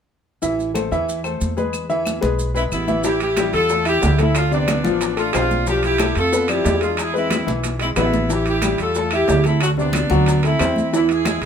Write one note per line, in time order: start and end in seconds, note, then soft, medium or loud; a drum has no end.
0.42 0.88 A1 medium
0.42 0.69 E3 medium
0.42 0.69 E4 medium
0.42 0.69 E5 medium
0.42 high conga soft
0.42 maracas medium
0.59 high conga soft
0.59 maracas soft
0.74 0.88 A3 medium
0.74 0.88 A4 medium
0.74 0.88 C5 medium
0.74 high conga medium
0.74 claves medium
0.74 maracas medium
0.91 1.37 E2 medium
0.91 1.18 E3 medium
0.91 1.19 E4 medium
0.91 1.19 E5 medium
0.91 high conga soft
0.91 maracas soft
1.09 high conga soft
1.09 maracas medium
1.24 1.51 A3 medium
1.24 1.51 A4 medium
1.24 1.51 C5 medium
1.24 high conga soft
1.24 claves medium
1.24 maracas soft
1.41 2.17 E2 medium
1.41 high conga medium
1.41 maracas medium
1.57 1.84 G#3 medium
1.57 1.84 G#4 medium
1.57 1.84 B4 medium
1.57 high conga medium
1.57 maracas soft
1.73 high conga soft
1.73 claves medium
1.73 maracas medium
1.89 2.16 E3 medium
1.89 2.17 E4 medium
1.89 2.17 E5 medium
1.89 high conga soft
1.89 maracas soft
2.06 high conga medium
2.06 claves medium
2.06 maracas medium
2.21 2.68 B1 medium
2.21 2.49 G#3 medium
2.21 2.49 G#4 medium
2.21 2.49 B4 medium
2.21 high conga medium
2.21 maracas soft
2.39 high conga soft
2.39 maracas medium
2.54 2.82 G#3 medium
2.54 2.63 C4 medium
2.54 2.62 E4 medium
2.54 2.82 G#4 medium
2.54 2.82 B4 medium
2.54 high conga soft
2.54 maracas soft
2.72 3.48 A1 medium
2.72 3.03 B3 medium
2.72 3.02 E4 medium
2.72 high conga soft
2.72 claves medium
2.72 maracas medium
2.88 3.01 E3 medium
2.88 3.01 E4 medium
2.88 3.02 E5 medium
2.88 high conga medium
2.88 maracas soft
3.04 3.31 E3 medium
3.04 3.31 E4 medium
3.04 3.20 E4 medium
3.04 3.19 G4 loud
3.04 high bongo medium
3.04 high conga soft
3.04 maracas medium
3.20 3.52 E4 medium
3.20 3.52 G4 loud
3.20 high conga soft
3.20 high timbale medium
3.20 maracas soft
3.37 3.64 G3 medium
3.37 3.64 G4 medium
3.37 high bongo medium
3.37 high conga medium
3.37 high timbale medium
3.37 low timbale medium
3.37 claves medium
3.37 maracas medium
3.53 3.99 E2 medium
3.53 3.85 F4 medium
3.53 3.84 A4 loud
3.53 high bongo soft
3.53 high conga soft
3.53 high timbale medium
3.53 maracas soft
3.69 3.83 A3 medium
3.69 3.83 A4 medium
3.69 high bongo medium
3.69 high conga soft
3.69 maracas medium
3.85 4.13 E4 medium
3.85 4.18 E4 medium
3.85 4.17 G4 loud
3.85 4.13 E5 medium
3.85 high bongo soft
3.85 high conga soft
3.85 high timbale medium
3.85 claves medium
3.85 maracas soft
4.02 4.79 D2 medium
4.02 high bongo medium
4.02 low bongo medium
4.02 high conga medium
4.02 low timbale medium
4.02 maracas medium
4.19 4.46 A3 medium
4.19 4.36 C4 medium
4.19 4.36 E4 medium
4.19 4.46 A4 medium
4.19 high bongo soft
4.19 high conga medium
4.19 high timbale medium
4.19 maracas soft
4.35 4.51 D4 medium
4.35 4.51 F4 loud
4.35 high bongo medium
4.35 high conga soft
4.35 high timbale medium
4.35 claves medium
4.35 maracas medium
4.51 4.79 C3 medium
4.51 5.14 B3 medium
4.51 5.14 D4 medium
4.51 4.79 D5 medium
4.51 high conga soft
4.51 maracas soft
4.68 high bongo medium
4.68 high conga medium
4.68 high timbale medium
4.68 low timbale medium
4.68 claves medium
4.68 maracas medium
4.84 5.31 A1 medium
4.84 5.11 F3 medium
4.84 5.11 F4 medium
4.84 high bongo soft
4.84 high conga medium
4.84 maracas soft
5.01 high bongo medium
5.01 high conga soft
5.01 high timbale medium
5.01 maracas medium
5.17 5.31 A3 medium
5.17 5.33 D4 medium
5.17 5.32 F4 medium
5.17 5.31 A4 medium
5.17 high bongo soft
5.17 high conga soft
5.17 high timbale medium
5.17 maracas soft
5.33 6.11 B1 medium
5.33 5.61 C4 medium
5.33 5.65 D4 medium
5.33 5.64 F4 loud
5.33 5.61 C5 medium
5.33 high bongo medium
5.33 low bongo medium
5.33 high conga soft
5.33 high timbale medium
5.33 low timbale medium
5.33 claves medium
5.33 maracas medium
5.51 high conga medium
5.51 maracas soft
5.67 5.94 F3 medium
5.67 5.83 D4 medium
5.67 5.94 F4 medium
5.67 5.82 G4 medium
5.67 high bongo medium
5.67 high conga soft
5.67 maracas medium
5.83 6.14 E4 medium
5.83 6.14 G4 loud
5.83 high conga soft
5.83 high timbale medium
5.83 maracas soft
5.98 6.26 A3 medium
5.98 6.27 A4 medium
5.98 high bongo medium
5.98 high conga medium
5.98 high timbale medium
5.98 low timbale medium
5.98 claves medium
5.98 maracas medium
6.15 6.62 F2 medium
6.15 6.48 F4 medium
6.15 6.48 A4 loud
6.15 high bongo soft
6.15 high conga soft
6.15 high timbale medium
6.15 maracas soft
6.32 6.46 B3 medium
6.32 6.46 B4 medium
6.32 high bongo medium
6.32 high conga soft
6.32 maracas medium
6.48 6.76 F3 medium
6.48 6.82 E4 medium
6.48 6.82 G4 loud
6.48 6.76 D5 medium
6.48 high bongo soft
6.48 high conga soft
6.48 high timbale medium
6.48 claves medium
6.48 maracas soft
6.65 7.42 E2 medium
6.65 high bongo medium
6.65 low bongo medium
6.65 high conga medium
6.65 low timbale medium
6.65 maracas medium
6.81 7.09 G#3 medium
6.81 6.98 D4 medium
6.81 6.97 F4 medium
6.81 7.09 G#4 medium
6.81 high bongo soft
6.81 high timbale medium
6.81 maracas soft
6.97 7.14 E4 medium
6.97 7.16 G#4 medium
6.97 high bongo medium
6.97 high conga soft
6.97 high timbale medium
6.97 claves medium
6.97 maracas medium
7.14 7.41 G#3 medium
7.14 7.51 C4 medium
7.14 7.51 E4 medium
7.14 7.41 B4 medium
7.14 high conga soft
7.14 maracas soft
7.30 high bongo medium
7.30 high conga medium
7.30 high timbale medium
7.30 low timbale medium
7.30 claves medium
7.30 maracas medium
7.47 7.93 B1 medium
7.47 7.74 E3 medium
7.47 7.74 E4 medium
7.47 high bongo soft
7.47 high conga medium
7.47 maracas soft
7.64 high bongo medium
7.64 high conga soft
7.64 high timbale medium
7.64 maracas medium
7.79 7.93 G#3 medium
7.79 7.89 C4 medium
7.79 7.89 E4 medium
7.79 7.93 G#4 medium
7.79 high conga soft
7.79 high timbale medium
7.79 maracas soft
7.96 8.73 A1 medium
7.96 8.23 B3 medium
7.96 8.28 B3 medium
7.96 8.28 E4 medium
7.96 8.24 B4 medium
7.96 low bongo medium
7.96 high conga soft
7.96 high timbale medium
7.96 low timbale medium
7.96 claves medium
7.96 maracas medium
8.13 low bongo medium
8.13 high conga medium
8.13 maracas soft
8.29 8.56 E3 medium
8.29 8.57 E4 medium
8.29 8.47 E4 medium
8.29 8.46 G4 medium
8.29 high bongo medium
8.29 high conga soft
8.29 maracas medium
8.46 8.78 E4 medium
8.46 8.77 G4 medium
8.46 high conga soft
8.46 high timbale medium
8.46 maracas soft
8.62 8.89 G3 medium
8.62 8.89 G4 medium
8.62 high bongo medium
8.62 high conga medium
8.62 high timbale medium
8.62 low timbale medium
8.62 claves medium
8.62 maracas medium
8.78 9.24 E2 medium
8.78 9.10 F4 medium
8.78 9.10 A4 medium
8.78 high bongo soft
8.78 high conga soft
8.78 high timbale medium
8.78 maracas soft
8.95 9.09 A3 medium
8.95 9.09 A4 medium
8.95 high bongo medium
8.95 high conga soft
8.95 maracas medium
9.11 9.39 E4 medium
9.11 9.43 E4 medium
9.11 9.43 G4 medium
9.11 9.40 E5 medium
9.11 high conga soft
9.11 high timbale medium
9.11 claves medium
9.11 maracas soft
9.28 10.05 D2 medium
9.28 high bongo medium
9.28 low bongo medium
9.28 high conga medium
9.28 low timbale medium
9.28 maracas medium
9.44 9.72 A3 medium
9.44 9.61 C4 medium
9.44 9.61 E4 medium
9.44 9.72 A4 medium
9.44 high bongo soft
9.44 high conga medium
9.44 high timbale medium
9.44 maracas soft
9.61 9.70 D4 medium
9.61 9.69 F#4 medium
9.61 high bongo medium
9.61 high conga soft
9.61 high timbale medium
9.61 claves medium
9.61 maracas medium
9.77 10.04 C3 medium
9.77 10.40 B3 medium
9.77 10.40 D4 medium
9.77 10.05 D5 medium
9.77 high conga soft
9.77 maracas soft
9.93 high bongo medium
9.93 high conga medium
9.93 high timbale medium
9.93 low timbale medium
9.93 claves medium
9.93 maracas medium
10.10 10.56 D2 medium
10.10 10.37 F#3 medium
10.10 10.37 F#4 medium
10.10 high bongo soft
10.10 high conga medium
10.10 maracas soft
10.26 high bongo medium
10.26 high conga soft
10.26 high timbale medium
10.26 maracas medium
10.43 10.57 A3 medium
10.43 10.90 C4 medium
10.43 10.90 E4 medium
10.43 10.57 A4 medium
10.43 high bongo soft
10.43 high conga soft
10.43 high timbale medium
10.43 maracas soft
10.59 11.36 E2 medium
10.59 10.87 C4 medium
10.59 10.87 C5 medium
10.59 high bongo medium
10.59 low bongo medium
10.59 high conga soft
10.59 high timbale medium
10.59 low timbale medium
10.59 claves medium
10.59 maracas medium
10.76 high conga medium
10.76 maracas soft
10.93 11.20 E3 medium
10.93 11.09 B3 medium
10.93 11.20 E4 medium
10.93 11.08 E4 medium
10.93 high bongo medium
10.93 high conga soft
10.93 maracas medium
11.09 11.26 E4 medium
11.09 11.26 G#4 medium
11.09 high conga soft
11.09 high timbale medium
11.09 maracas soft
11.25 11.45 G#3 medium
11.25 11.41 E4 medium
11.25 11.45 G#4 medium
11.25 11.41 G#4 medium
11.25 high bongo medium
11.25 high conga medium
11.25 high timbale medium
11.25 low timbale medium
11.25 claves medium
11.25 maracas medium
11.42 11.45 B1 medium
11.42 11.45 E4 medium
11.42 high timbale medium